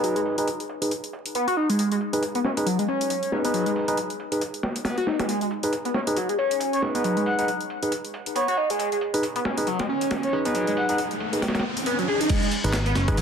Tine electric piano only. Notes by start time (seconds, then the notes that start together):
Already playing: D#4 G#4 B4
0.38 D#4 G#4 B4
0.82 D#4 G#4 B4
2.13 D#4 G#4 B4
2.57 D#4 G#4 B4
3.32 D#4 G#4 B4
3.44 D#4 G#4 B4
3.88 D#4 G#4 B4
4.32 D#4 G#4 B4
5.63 D#4 G#4 B4
6.07 D#4 G#4 B4
6.82 D#4 G#4 B4
6.95 D#4 G#4 B4
7.39 D#4 G#4 B4
7.83 D#4 G#4 B4
9.14 D#4 G#4 B4
9.58 D#4 G#4 B4
10.33 D#4 G#4 B4
10.45 D#4 G#4 B4
10.89 D#4 G#4 B4
11.33 D#4 G#4 B4
12.64 D#4 G#4 B4
13.08 D#4 G#4 B4